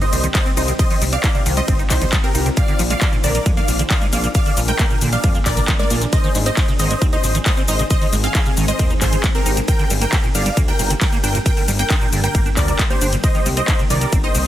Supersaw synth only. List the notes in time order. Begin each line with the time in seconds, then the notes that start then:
0.02 C5 D#5
0.35 C5 D#5
0.57 C5 D#5
0.79 C5 D#5
1.13 D5 F5
1.57 C5 D#5
1.90 D#4 C5
2.24 G4 A#4
2.57 D5 F5
2.90 D5 F5
3.24 A#4 D5
3.57 D5 F5
3.91 D5 F5
4.13 D5 F5
4.35 D5 F5
4.68 A#4 G5
5.13 D5 F5
5.46 A#4 D5
5.79 A#4 D5
6.13 C5 D#5
6.46 C5 D#5
6.79 C5 D#5
7.13 C5 D#5
7.46 C5 D#5
7.68 C5 D#5
7.90 C5 D#5
8.24 G#4 F5
8.68 C5 D#5
9.02 G#4 C5
9.35 G4 A#4
9.68 A#4 G5
10.01 A#4 G5
10.35 D5 F5
10.68 A#4 G5
11.01 A#4 G5
11.23 A#4 G5
11.46 A#4 G5
11.79 A#4 G5
12.24 A#4 G5
12.57 A#4 D5
12.90 G4 C5
13.24 C5 D#5
13.57 C5 D#5
13.90 A#4 D5
14.24 C5 D#5